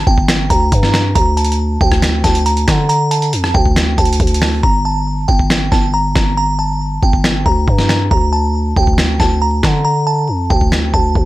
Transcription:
0.07 G1 G5, kick
0.18 kick
0.28 finger snap, snare, closed hi-hat
0.50 D2 A#5, kick, closed hi-hat
0.72 G2, kick, closed hi-hat
0.83 snare
0.94 finger snap, snare
1.15 D2 A#5, kick, closed hi-hat
1.37 A5, closed hi-hat
1.44 closed hi-hat
1.52 closed hi-hat
1.81 D2 G5, kick
1.92 kick, cross-stick
2.02 finger snap, snare, closed hi-hat
2.24 D2 A5, kick, snare, closed hi-hat
2.35 closed hi-hat
2.46 A#5, closed hi-hat
2.57 closed hi-hat
2.68 D3, finger snap, kick, snare, closed hi-hat
2.89 A#5, closed hi-hat
3.11 A5, closed hi-hat
3.22 closed hi-hat
3.33 F2, closed hi-hat
3.44 cross-stick
3.54 D2 G5, kick
3.66 kick
3.76 finger snap, snare, closed hi-hat
3.98 D2 A5, kick, closed hi-hat
4.05 closed hi-hat
4.13 closed hi-hat
4.20 D2, kick, closed hi-hat
4.27 closed hi-hat
4.34 closed hi-hat
4.42 finger snap, snare, open hi-hat
4.63 G1 A#5, kick
4.85 A5
5.28 G1 G5, kick
5.39 kick
5.50 finger snap, snare
5.72 G1 A5, kick, snare
5.94 A#5
6.16 G1, finger snap, kick, snare
6.37 A#5
6.59 A5
7.03 G1 G5, kick
7.13 kick
7.24 finger snap, snare
7.46 D2 A#5, kick
7.68 G2, kick
7.78 snare
7.89 finger snap, snare
8.11 D2 A#5, kick
8.33 A5
8.76 D2 G5, kick
8.87 kick
8.98 finger snap, snare
9.20 D2 A5, kick, snare
9.42 A#5
9.63 D3, finger snap, kick, snare
9.85 A#5
10.07 A5
10.29 F2
10.50 D2 G5, kick
10.61 kick
10.72 finger snap, snare
10.94 D2 A5, kick
11.15 D2, kick

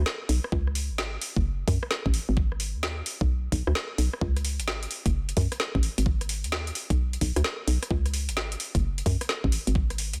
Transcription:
0.06 snare
0.29 B1, open hi-hat
0.44 cross-stick
0.52 C#2, kick
0.67 cross-stick
0.75 open hi-hat
0.90 G#1
0.98 snare
1.22 open hi-hat
1.36 F#1, kick
1.68 F#2, kick, open hi-hat
1.83 cross-stick
1.91 snare
2.06 A1, kick
2.14 open hi-hat
2.29 G#1
2.37 kick
2.52 cross-stick
2.60 open hi-hat
2.75 D#2
2.83 snare
3.06 open hi-hat
3.21 B1, kick
3.52 B1, kick, open hi-hat
3.67 D2, cross-stick
3.75 snare
3.98 B1, open hi-hat
4.13 cross-stick
4.21 C#2, kick
4.37 cross-stick, closed hi-hat
4.45 open hi-hat
4.60 G#1, closed hi-hat
4.68 snare
4.83 closed hi-hat
4.91 open hi-hat
5.06 F#1, kick, closed hi-hat
5.29 closed hi-hat
5.37 F#2, kick, open hi-hat
5.52 cross-stick, closed hi-hat
5.60 snare
5.75 A1, kick
5.83 open hi-hat
5.98 G#1, closed hi-hat
6.06 kick
6.21 cross-stick, closed hi-hat
6.29 open hi-hat
6.44 D#2, closed hi-hat
6.52 snare
6.67 closed hi-hat
6.75 open hi-hat
6.90 B1, kick, closed hi-hat
7.13 closed hi-hat
7.21 B1, kick, open hi-hat
7.36 D2, cross-stick, closed hi-hat
7.44 snare
7.67 B1, open hi-hat
7.83 cross-stick, closed hi-hat
7.91 C#2, kick
8.06 cross-stick, closed hi-hat
8.14 open hi-hat
8.29 G#1, closed hi-hat
8.37 snare
8.52 closed hi-hat
8.60 open hi-hat
8.75 F#1, kick, closed hi-hat
8.98 closed hi-hat
9.06 F#2, kick, open hi-hat
9.21 cross-stick, closed hi-hat
9.29 snare
9.44 A1, kick
9.52 open hi-hat
9.67 G#1, closed hi-hat
9.75 kick
9.90 cross-stick, closed hi-hat
9.98 open hi-hat
10.13 D#2, closed hi-hat

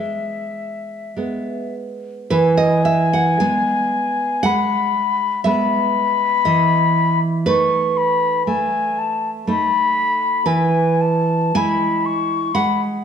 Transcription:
Already playing: G#3 E5
1.17 G#3 B3
2.30 E3 B4 G#5
2.57 D#5
2.85 E5
3.13 F#5
3.40 G#3 B3 G#5
4.43 G#3 F#5 B5
5.44 G#3 B3 E5 B5
6.45 E3 D#5
7.46 A3 D#4 B4 C#6
7.97 B5
8.47 A3 G#5
8.98 A5
9.47 A3 D#4 B5
10.46 E3 B4 G#5
11.01 A5
11.55 G#3 E4 G#5 B5
12.06 C#6
12.54 G#3 F#5 B5

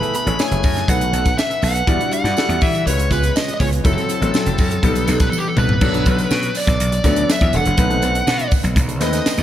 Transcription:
Already playing: A3 E4 G#4 B4 B5
0.02 B3 E4 A4, closed hi-hat
0.14 B3 E4 A4 B5, closed hi-hat, tambourine
0.26 A1 A3 E4 G#4 C#5, muted clean electric guitar stroke, closed hi-hat
0.38 A3 E4 G#4 C#5 G#5, muted clean electric guitar stroke, snare, tambourine
0.51 F#1, muted clean electric guitar stroke, closed hi-hat
0.63 F#2, kick, open hi-hat, tambourine
0.76 muted clean electric guitar stroke, snare, closed hi-hat
0.88 B1 A3 D#4 F#4 B4 F#5, kick, closed hi-hat, tambourine
1.01 muted clean electric guitar stroke, closed hi-hat
1.13 B1 B3 D#4 A4, closed hi-hat, tambourine
1.25 muted clean electric guitar stroke, kick, snare, closed hi-hat, tambourine
1.38 E5, snare, tambourine
1.50 muted clean electric guitar stroke, closed hi-hat
1.62 B1 B3 D#4 A4 F#5, open hi-hat, tambourine
1.75 muted clean electric guitar stroke, closed hi-hat
1.87 E2 G3 E4 F#4 D5, muted clean electric guitar stroke, kick, closed hi-hat, tambourine
2.00 G3 D4 F#4, closed hi-hat
2.11 G3 D4 F#4 F#5, closed hi-hat, tambourine
2.24 G2 G3 E4 F#4 D5, muted clean electric guitar stroke, snare, closed hi-hat, tambourine
2.36 G3 E4 F#4 A4, muted clean electric guitar stroke, snare, tambourine
2.49 E2, muted clean electric guitar stroke, closed hi-hat
2.61 E3 E5, kick, open hi-hat, tambourine
2.74 muted clean electric guitar stroke, closed hi-hat
2.86 C#2 G#3 C#4 F4 B4 C#5, closed hi-hat, tambourine
2.98 muted clean electric guitar stroke, closed hi-hat, tambourine
3.11 C#2 B3 F4 G#4 B4, kick, closed hi-hat, tambourine
3.23 muted clean electric guitar stroke, closed hi-hat, tambourine
3.36 D#5, snare, tambourine
3.48 muted clean electric guitar stroke, closed hi-hat
3.54 D#5
3.60 C#2 B3 F4 G#4 C#5, kick, open hi-hat, tambourine
3.73 muted clean electric guitar stroke, closed hi-hat
3.85 F#1 F#3 C4 E4 A4, muted clean electric guitar stroke, kick, closed hi-hat, tambourine
3.97 C4 E4 A4, closed hi-hat
4.09 C4 E4 A4, closed hi-hat, tambourine
4.21 A1 F#3 C4 E4 A4, muted clean electric guitar stroke, closed hi-hat, tambourine
4.34 F#3 C4 E4 A4, muted clean electric guitar stroke, snare, tambourine
4.46 F#1, muted clean electric guitar stroke, closed hi-hat
4.58 F#2, kick, open hi-hat, tambourine
4.71 muted clean electric guitar stroke, closed hi-hat
4.83 B1 G3 B3 D#4 A4, kick, closed hi-hat, tambourine
4.96 muted clean electric guitar stroke, closed hi-hat, tambourine
5.08 B1 B3 D#4 A4, snare, closed hi-hat, tambourine
5.20 B4, muted clean electric guitar stroke, kick, snare, closed hi-hat, tambourine
5.30 A4, high tom, tambourine
5.39 G4
5.44 A4, muted clean electric guitar stroke
5.56 C2 B3 D#4 A4 B4, mid tom, tambourine
5.69 muted clean electric guitar stroke, floor tom
5.81 B1 F#3 B3 D4 A4, muted clean electric guitar stroke, kick, crash, tambourine
5.93 D4 F#4 A4, closed hi-hat
6.05 B1 D4 F#4 A4, kick, closed hi-hat, tambourine
6.18 muted clean electric guitar stroke, closed hi-hat, tambourine
6.30 B2, muted clean electric guitar stroke, snare, tambourine
6.43 muted clean electric guitar stroke, closed hi-hat
6.55 D5, open hi-hat, tambourine
6.67 B1, muted clean electric guitar stroke, kick, snare, closed hi-hat, tambourine
6.80 B1, closed hi-hat, tambourine
6.92 muted clean electric guitar stroke, closed hi-hat, tambourine
7.04 D2 F#3 B3 D4 F#4 A4, kick, snare, closed hi-hat, tambourine
7.16 muted clean electric guitar stroke, closed hi-hat, tambourine
7.30 E5, snare, tambourine
7.41 E2, muted clean electric guitar stroke, kick, closed hi-hat
7.53 E1 D4 F#4 A4 F#5, closed hi-hat, tambourine
7.65 F#1, muted clean electric guitar stroke, closed hi-hat
7.77 B1 A3 C4 D#4 B4, muted clean electric guitar stroke, kick, closed hi-hat, tambourine
7.90 C4 D#4 A4, closed hi-hat
8.02 B1 C4 D#4 A4, closed hi-hat, tambourine
8.15 muted clean electric guitar stroke, closed hi-hat
8.27 B2, muted clean electric guitar stroke, snare, tambourine
8.39 muted clean electric guitar stroke, closed hi-hat
8.51 kick, open hi-hat, tambourine
8.64 B1, muted clean electric guitar stroke, closed hi-hat, tambourine
8.76 B1, kick, closed hi-hat, tambourine
8.89 muted clean electric guitar stroke, closed hi-hat, tambourine
9.00 D#2 A3 C4 D#4 A4 B4 D#5, snare, closed hi-hat, tambourine
9.13 muted clean electric guitar stroke, snare, closed hi-hat, tambourine
9.26 snare, tambourine
9.38 E2, muted clean electric guitar stroke, closed hi-hat

